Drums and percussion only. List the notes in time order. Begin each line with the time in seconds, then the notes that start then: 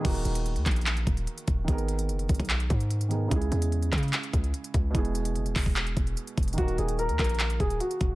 0.05 kick, closed hi-hat, crash
0.15 closed hi-hat
0.25 closed hi-hat
0.35 closed hi-hat
0.46 closed hi-hat
0.56 closed hi-hat
0.66 kick, clap, closed hi-hat
0.71 closed hi-hat
0.76 closed hi-hat
0.81 closed hi-hat
0.86 clap, closed hi-hat
0.97 closed hi-hat
1.07 kick, closed hi-hat
1.17 closed hi-hat
1.27 closed hi-hat
1.38 closed hi-hat
1.48 kick, closed hi-hat
1.68 kick, closed hi-hat
1.78 closed hi-hat
1.88 closed hi-hat
1.99 closed hi-hat
2.09 closed hi-hat
2.19 closed hi-hat
2.29 kick, closed hi-hat, open hi-hat
2.34 closed hi-hat
2.40 kick, closed hi-hat
2.45 closed hi-hat
2.50 clap, closed hi-hat
2.60 closed hi-hat
2.70 kick, closed hi-hat
2.80 closed hi-hat
2.91 closed hi-hat
3.01 closed hi-hat
3.11 closed hi-hat
3.31 kick, closed hi-hat
3.42 closed hi-hat
3.52 closed hi-hat
3.62 closed hi-hat
3.72 closed hi-hat
3.82 closed hi-hat
3.93 kick, clap, closed hi-hat
3.98 closed hi-hat
4.03 closed hi-hat
4.08 closed hi-hat
4.13 clap, closed hi-hat
4.23 closed hi-hat
4.33 kick, closed hi-hat
4.44 closed hi-hat
4.54 closed hi-hat
4.64 closed hi-hat
4.74 kick, closed hi-hat
4.95 kick, closed hi-hat
5.05 closed hi-hat
5.15 closed hi-hat
5.25 closed hi-hat
5.36 closed hi-hat
5.46 closed hi-hat
5.56 kick, clap, open hi-hat
5.66 kick
5.76 clap, closed hi-hat
5.87 closed hi-hat
5.97 kick, closed hi-hat
6.07 closed hi-hat
6.17 closed hi-hat
6.27 closed hi-hat
6.37 kick, closed hi-hat
6.43 closed hi-hat
6.48 closed hi-hat
6.53 closed hi-hat
6.58 kick, closed hi-hat
6.68 closed hi-hat
6.78 closed hi-hat
6.88 closed hi-hat
6.99 closed hi-hat
7.09 closed hi-hat
7.19 kick, clap, closed hi-hat
7.24 closed hi-hat
7.29 closed hi-hat
7.34 closed hi-hat
7.40 clap, closed hi-hat
7.50 closed hi-hat
7.60 kick, closed hi-hat
7.70 closed hi-hat
7.80 closed hi-hat
7.91 closed hi-hat
8.01 kick, closed hi-hat